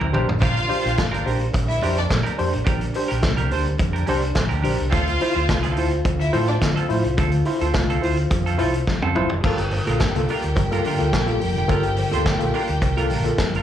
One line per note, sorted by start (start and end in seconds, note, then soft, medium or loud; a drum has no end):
0.00 0.11 D2 medium
0.00 0.10 C3 medium
0.00 0.12 C4 medium
0.00 0.13 C4 medium
0.00 0.14 E4 medium
0.00 0.14 A#4 medium
0.00 mid tom medium
0.12 0.26 A#1 medium
0.12 4.89 G3 medium
0.12 4.89 A#3 medium
0.12 0.27 D4 medium
0.12 0.28 D4 medium
0.12 4.89 D4 medium
0.12 0.27 G4 medium
0.12 0.28 G4 medium
0.12 0.27 A#4 medium
0.12 0.27 C5 medium
0.12 floor tom medium
0.12 high conga medium
0.28 0.43 A1 medium
0.28 muted clean electric guitar stroke soft
0.28 floor tom medium
0.40 0.65 A#1 medium
0.40 0.55 A#2 soft
0.40 0.55 F3 medium
0.40 0.60 D4 medium
0.40 1.22 F4 loud
0.40 0.56 G4 medium
0.40 0.55 A#4 medium
0.40 1.22 F5 loud
0.40 kick loud
0.40 closed hi-hat medium
0.40 cowbell medium
0.40 muted conga soft
0.56 muted clean electric guitar stroke soft
0.56 closed hi-hat soft
0.68 0.83 D4 medium
0.68 0.84 G4 medium
0.68 0.84 C5 medium
0.68 muted clean electric guitar stroke soft
0.68 open hi-hat medium
0.68 cowbell medium
0.68 muted conga soft
0.83 0.96 A#1 loud
0.83 0.95 D4 medium
0.83 0.96 G4 medium
0.83 0.90 G4 soft
0.83 0.97 C5 medium
0.83 0.90 C5 soft
0.83 closed hi-hat medium
0.96 1.12 A#2 soft
0.96 1.12 F3 medium
0.96 muted clean electric guitar stroke soft
0.96 kick loud
0.96 snare loud
0.96 closed hi-hat medium
0.96 cowbell medium
0.96 high conga medium
1.11 1.24 D4 medium
1.11 1.25 G4 medium
1.11 1.26 A#4 medium
1.11 closed hi-hat soft
1.25 1.49 A#1 medium
1.25 1.41 D4 medium
1.25 1.40 D4 medium
1.25 1.40 G4 medium
1.25 1.39 A#4 medium
1.25 1.40 C5 medium
1.25 open hi-hat medium
1.25 low conga medium
1.40 1.47 G4 soft
1.40 1.47 C5 soft
1.40 muted clean electric guitar stroke soft
1.40 closed hi-hat soft
1.53 1.77 A#1 medium
1.53 muted clean electric guitar stroke soft
1.53 kick loud
1.53 closed hi-hat medium
1.53 cowbell medium
1.53 muted conga medium
1.68 1.79 E4 medium
1.68 1.79 E5 medium
1.68 muted clean electric guitar stroke soft
1.68 closed hi-hat soft
1.81 2.05 F2 medium
1.81 2.01 D4 medium
1.81 1.96 D4 medium
1.81 1.97 G4 medium
1.81 1.96 A#4 medium
1.81 1.97 C5 loud
1.81 open hi-hat medium
1.81 cowbell medium
1.81 muted conga medium
1.97 2.08 D4 medium
1.97 2.08 D5 medium
1.97 muted clean electric guitar stroke soft
1.97 closed hi-hat soft
2.09 2.23 A#2 loud
2.09 muted clean electric guitar stroke soft
2.09 kick loud
2.09 snare medium
2.09 closed hi-hat medium
2.09 cowbell medium
2.09 high conga medium
2.23 2.36 D4 medium
2.23 2.37 G4 medium
2.23 2.38 A#4 medium
2.23 closed hi-hat soft
2.37 2.52 F2 medium
2.37 2.53 D4 medium
2.37 2.53 G4 medium
2.37 2.53 C5 loud
2.37 muted clean electric guitar stroke soft
2.37 open hi-hat medium
2.37 high conga medium
2.53 2.65 A1 medium
2.53 muted clean electric guitar stroke medium
2.53 closed hi-hat soft
2.65 2.89 A#1 medium
2.65 2.81 A#2 medium
2.65 2.81 F3 medium
2.65 2.84 D4 medium
2.65 2.80 G4 medium
2.65 2.79 A#4 medium
2.65 kick loud
2.65 closed hi-hat medium
2.65 cowbell medium
2.65 muted conga soft
2.80 muted clean electric guitar stroke soft
2.80 closed hi-hat medium
2.94 3.10 D4 medium
2.94 3.10 G4 medium
2.94 3.09 C5 medium
2.94 muted clean electric guitar stroke soft
2.94 open hi-hat medium
2.94 cowbell medium
3.08 3.23 A#1 medium
3.08 3.21 D4 medium
3.08 3.22 G4 medium
3.08 3.16 G4 soft
3.08 3.23 A#4 medium
3.08 3.16 C5 soft
3.08 closed hi-hat medium
3.22 3.53 C2 medium
3.22 3.38 A#2 medium
3.22 3.38 F3 soft
3.22 kick medium
3.22 snare loud
3.22 closed hi-hat medium
3.22 cowbell medium
3.22 high conga medium
3.37 3.50 D4 medium
3.37 3.51 G4 medium
3.37 3.53 A#4 medium
3.37 closed hi-hat soft
3.51 3.75 D2 medium
3.51 3.66 D4 medium
3.51 3.66 G4 medium
3.51 3.66 C5 medium
3.51 open hi-hat medium
3.51 low conga medium
3.65 3.73 G4 soft
3.65 3.73 C5 soft
3.65 muted clean electric guitar stroke medium
3.65 closed hi-hat soft
3.78 4.02 F2 medium
3.78 muted clean electric guitar stroke soft
3.78 kick loud
3.78 closed hi-hat medium
3.78 cowbell medium
3.78 muted conga soft
3.93 4.05 D4 soft
3.93 4.07 G4 medium
3.93 4.07 A#4 medium
3.93 closed hi-hat soft
4.06 4.31 C2 medium
4.06 4.28 D4 medium
4.06 4.22 D4 medium
4.06 4.22 G4 medium
4.06 4.23 G4 medium
4.06 4.21 A#4 medium
4.06 4.23 C5 loud
4.06 open hi-hat medium
4.06 cowbell medium
4.06 muted conga medium
4.22 muted clean electric guitar stroke soft
4.22 closed hi-hat soft
4.35 4.50 A#2 medium
4.35 4.50 F3 medium
4.35 muted clean electric guitar stroke soft
4.35 kick medium
4.35 snare medium
4.35 closed hi-hat medium
4.35 cowbell medium
4.35 high conga medium
4.49 4.62 D2 medium
4.49 4.61 D4 soft
4.49 4.61 G4 medium
4.49 4.62 A#4 medium
4.49 closed hi-hat soft
4.62 4.77 A#1 medium
4.62 4.82 D4 medium
4.62 4.78 D4 medium
4.62 4.78 G4 medium
4.62 4.76 A#4 medium
4.62 4.78 C5 medium
4.62 open hi-hat medium
4.62 high conga medium
4.77 4.93 C2 loud
4.77 4.85 G4 soft
4.77 4.85 C5 soft
4.77 muted clean electric guitar stroke soft
4.77 closed hi-hat soft
4.90 5.15 D2 medium
4.90 9.26 D3 medium
4.90 5.07 D3 medium
4.90 5.07 A3 medium
4.90 5.10 C4 medium
4.90 9.26 C4 medium
4.90 5.06 F4 medium
4.90 9.26 F4 medium
4.90 5.73 F4 loud
4.90 5.04 A4 loud
4.90 5.73 F5 loud
4.90 kick loud
4.90 closed hi-hat medium
4.90 cowbell medium
4.90 muted conga soft
5.06 muted clean electric guitar stroke soft
5.06 closed hi-hat soft
5.18 5.35 E4 medium
5.18 muted clean electric guitar stroke soft
5.18 open hi-hat medium
5.18 cowbell medium
5.18 muted conga soft
5.22 5.35 F4 medium
5.22 5.35 C5 medium
5.34 5.49 D2 loud
5.34 5.46 C4 medium
5.34 5.48 F4 medium
5.34 5.42 F4 soft
5.34 5.48 C5 medium
5.34 5.42 C5 soft
5.34 closed hi-hat soft
5.48 5.78 C2 medium
5.48 5.64 D3 medium
5.48 5.63 A3 medium
5.48 muted clean electric guitar stroke soft
5.48 kick loud
5.48 snare medium
5.48 closed hi-hat medium
5.48 cowbell medium
5.48 high conga medium
5.63 5.75 C4 medium
5.63 5.77 F4 medium
5.63 5.78 A4 medium
5.63 closed hi-hat soft
5.76 6.00 D2 medium
5.76 5.92 C4 medium
5.76 5.91 E4 medium
5.76 5.92 F4 medium
5.76 5.91 A4 medium
5.76 5.92 C5 medium
5.76 open hi-hat medium
5.76 low conga medium
5.91 5.98 F4 soft
5.91 5.98 C5 soft
5.91 muted clean electric guitar stroke soft
5.91 closed hi-hat soft
6.05 6.28 D2 medium
6.05 muted clean electric guitar stroke soft
6.05 kick loud
6.05 closed hi-hat medium
6.05 cowbell medium
6.05 muted conga medium
6.20 6.31 E4 medium
6.20 6.31 E5 medium
6.20 muted clean electric guitar stroke medium
6.20 closed hi-hat soft
6.33 6.57 A2 medium
6.33 6.52 C4 medium
6.33 6.47 E4 medium
6.33 6.47 F4 medium
6.33 6.49 F4 medium
6.33 6.47 A4 medium
6.33 6.47 C5 loud
6.33 open hi-hat medium
6.33 cowbell medium
6.33 muted conga medium
6.48 6.59 D4 medium
6.48 6.59 D5 medium
6.48 muted clean electric guitar stroke soft
6.48 closed hi-hat soft
6.61 6.74 D3 medium
6.61 muted clean electric guitar stroke soft
6.61 kick medium
6.61 snare loud
6.61 closed hi-hat medium
6.61 cowbell medium
6.61 high conga medium
6.76 6.87 C4 medium
6.76 6.88 F4 medium
6.76 6.88 A4 medium
6.76 closed hi-hat soft
6.89 7.02 A2 medium
6.89 7.04 E4 medium
6.89 7.04 F4 medium
6.89 7.04 C5 loud
6.89 muted clean electric guitar stroke soft
6.89 open hi-hat medium
6.89 high conga medium
7.04 7.16 C2 medium
7.04 muted clean electric guitar stroke soft
7.04 closed hi-hat soft
7.17 7.41 D2 medium
7.17 7.32 D3 medium
7.17 7.32 A3 medium
7.17 7.37 C4 medium
7.17 7.33 F4 medium
7.17 7.31 A4 loud
7.17 kick loud
7.17 closed hi-hat medium
7.17 cowbell medium
7.17 muted conga soft
7.31 muted clean electric guitar stroke medium
7.31 closed hi-hat soft
7.45 7.60 E4 medium
7.45 7.60 F4 medium
7.45 7.60 C5 medium
7.45 muted clean electric guitar stroke soft
7.45 open hi-hat medium
7.45 cowbell medium
7.61 7.75 D2 loud
7.61 7.74 C4 soft
7.61 7.67 F4 soft
7.61 7.74 F4 medium
7.61 7.75 A4 medium
7.61 7.67 C5 soft
7.61 closed hi-hat medium
7.74 7.97 C2 medium
7.74 7.89 D3 soft
7.74 7.88 A3 medium
7.74 kick loud
7.74 snare loud
7.74 closed hi-hat medium
7.74 cowbell medium
7.74 high conga medium
7.90 8.01 C4 medium
7.90 8.03 F4 medium
7.90 8.04 A4 medium
7.90 closed hi-hat soft
8.01 8.26 D2 medium
8.01 8.18 C4 medium
8.01 8.16 E4 medium
8.01 8.15 F4 medium
8.01 8.18 F4 medium
8.01 8.15 C5 medium
8.01 8.17 C5 medium
8.01 open hi-hat medium
8.01 low conga medium
8.16 8.23 F4 soft
8.16 8.23 C5 soft
8.16 muted clean electric guitar stroke soft
8.16 closed hi-hat soft
8.31 8.62 F2 medium
8.31 muted clean electric guitar stroke soft
8.31 kick loud
8.31 closed hi-hat medium
8.31 cowbell medium
8.31 muted conga medium
8.46 8.57 C4 medium
8.46 8.58 F4 medium
8.46 8.59 A4 medium
8.46 closed hi-hat soft
8.58 8.82 C2 medium
8.58 8.77 C4 medium
8.58 8.73 E4 medium
8.58 8.73 F4 medium
8.58 8.74 F4 loud
8.58 8.73 A4 loud
8.58 8.73 C5 loud
8.58 open hi-hat medium
8.58 cowbell medium
8.58 muted conga medium
8.74 muted clean electric guitar stroke soft
8.74 closed hi-hat soft
8.87 muted clean electric guitar stroke soft
8.87 kick medium
8.87 snare soft
8.87 cowbell medium
8.87 high conga medium
9.02 9.14 F2 medium
9.02 9.15 C4 medium
9.02 9.16 F4 medium
9.02 9.16 A4 medium
9.02 high tom medium
9.15 9.28 G1 medium
9.15 9.31 C4 medium
9.15 9.30 E4 loud
9.15 9.30 F4 medium
9.15 9.31 F4 medium
9.15 9.30 A4 medium
9.15 9.30 C5 medium
9.15 mid tom medium
9.15 high conga medium
9.30 9.42 F1 medium
9.30 muted clean electric guitar stroke soft
9.30 floor tom medium
9.43 9.78 G1 medium
9.43 13.62 G3 medium
9.43 9.58 A#3 medium
9.43 9.63 D4 medium
9.43 13.62 F4 medium
9.43 9.58 F4 medium
9.43 9.60 F4 medium
9.43 13.62 G4 medium
9.43 9.58 A4 loud
9.43 13.62 A#4 medium
9.43 9.58 A#4 medium
9.43 13.62 G5 medium
9.43 kick loud
9.43 crash medium
9.43 cowbell medium
9.43 muted conga soft
9.58 muted clean electric guitar stroke soft
9.58 closed hi-hat soft
9.71 9.86 G2 medium
9.71 9.86 D3 medium
9.71 muted clean electric guitar stroke soft
9.71 open hi-hat medium
9.71 cowbell medium
9.71 muted conga soft
9.87 9.98 A#1 medium
9.87 9.99 A#3 medium
9.87 10.00 D4 soft
9.87 9.99 F4 medium
9.87 10.01 F4 soft
9.87 10.00 A4 medium
9.87 10.01 A#4 medium
9.87 closed hi-hat medium
10.00 10.15 G2 medium
10.00 10.15 D3 medium
10.00 kick loud
10.00 snare loud
10.00 closed hi-hat medium
10.00 cowbell medium
10.00 high conga medium
10.15 10.26 C2 medium
10.15 10.28 A#3 medium
10.15 10.27 F4 medium
10.15 10.28 A4 medium
10.15 muted clean electric guitar stroke soft
10.15 closed hi-hat soft
10.28 10.48 D4 medium
10.28 10.35 F4 soft
10.28 10.44 F4 medium
10.28 10.35 A4 soft
10.28 10.43 A#4 medium
10.28 open hi-hat medium
10.42 10.54 D2 medium
10.42 muted clean electric guitar stroke soft
10.42 closed hi-hat soft
10.56 10.79 G2 medium
10.56 muted clean electric guitar stroke soft
10.56 kick loud
10.56 closed hi-hat medium
10.56 cowbell medium
10.56 muted conga medium
10.71 10.84 A#3 medium
10.71 10.85 D4 medium
10.71 10.84 F4 medium
10.71 10.85 F4 medium
10.71 10.84 A4 medium
10.71 10.86 A#4 medium
10.71 closed hi-hat soft
10.84 10.99 G2 medium
10.84 10.99 D3 medium
10.84 11.04 D4 medium
10.84 11.01 F4 medium
10.84 11.00 A#4 medium
10.84 open hi-hat medium
10.84 muted conga medium
10.98 11.11 D2 medium
10.98 11.12 A#3 medium
10.98 11.12 F4 medium
10.98 11.12 A4 medium
10.98 muted clean electric guitar stroke soft
10.98 closed hi-hat soft
11.13 11.36 A#1 medium
11.13 muted clean electric guitar stroke soft
11.13 kick medium
11.13 snare loud
11.13 closed hi-hat medium
11.13 cowbell medium
11.13 high conga medium
11.26 11.40 A#3 medium
11.26 11.40 F4 medium
11.26 11.40 A4 medium
11.26 muted clean electric guitar stroke soft
11.26 closed hi-hat soft
11.40 11.65 F1 medium
11.40 open hi-hat medium
11.40 high conga medium
11.55 11.68 G2 medium
11.55 11.68 D3 medium
11.55 muted clean electric guitar stroke soft
11.55 closed hi-hat soft
11.68 12.04 G1 loud
11.68 11.83 A#3 loud
11.68 11.88 D4 medium
11.68 11.83 F4 medium
11.68 11.86 F4 medium
11.68 11.83 A4 loud
11.68 kick loud
11.68 closed hi-hat medium
11.68 cowbell medium
11.68 muted conga soft
11.72 11.85 A#4 loud
11.83 muted clean electric guitar stroke soft
11.83 closed hi-hat soft
11.96 12.11 G2 medium
11.96 12.11 D3 medium
11.96 muted clean electric guitar stroke soft
11.96 open hi-hat medium
11.96 cowbell medium
11.96 muted conga soft
12.11 12.24 D2 medium
12.11 12.24 A#3 medium
12.11 12.26 D4 soft
12.11 12.25 F4 medium
12.11 12.26 F4 medium
12.11 12.25 A4 medium
12.11 12.26 C5 medium
12.11 closed hi-hat medium
12.25 12.40 G2 medium
12.25 12.39 D3 medium
12.25 muted clean electric guitar stroke soft
12.25 kick loud
12.25 snare loud
12.25 closed hi-hat medium
12.25 cowbell medium
12.25 high conga medium
12.39 12.52 A#1 medium
12.39 12.53 A#3 medium
12.39 12.52 F4 medium
12.39 12.52 A4 medium
12.39 muted clean electric guitar stroke soft
12.39 closed hi-hat soft
12.53 12.73 D4 loud
12.53 12.60 F4 soft
12.53 12.69 F4 medium
12.53 12.60 A4 soft
12.53 12.68 A#4 loud
12.53 open hi-hat medium
12.53 low conga medium
12.67 12.80 D2 medium
12.67 muted clean electric guitar stroke soft
12.67 closed hi-hat soft
12.82 13.11 C2 loud
12.82 muted clean electric guitar stroke soft
12.82 kick loud
12.82 closed hi-hat medium
12.82 cowbell medium
12.82 muted conga medium
12.97 13.09 A#3 medium
12.97 13.10 D4 medium
12.97 13.10 F4 medium
12.97 13.11 F4 medium
12.97 13.10 A4 medium
12.97 13.12 A#4 medium
12.97 closed hi-hat soft
13.10 13.33 A#1 loud
13.10 13.24 G2 medium
13.10 13.24 D3 medium
13.10 13.26 D4 medium
13.10 13.26 F4 medium
13.10 13.25 A#4 medium
13.10 open hi-hat medium
13.10 muted conga medium
13.24 13.37 A#3 medium
13.24 13.38 F4 medium
13.24 13.38 A4 medium
13.24 muted clean electric guitar stroke soft
13.24 closed hi-hat soft
13.38 13.61 G1 medium
13.38 13.53 G2 medium
13.38 13.53 D3 medium
13.38 muted clean electric guitar stroke soft
13.38 kick medium
13.38 snare medium
13.38 closed hi-hat medium
13.38 cowbell medium
13.38 high conga medium
13.54 13.62 D4 medium
13.54 13.62 F4 medium
13.54 13.62 A#4 medium
13.54 closed hi-hat soft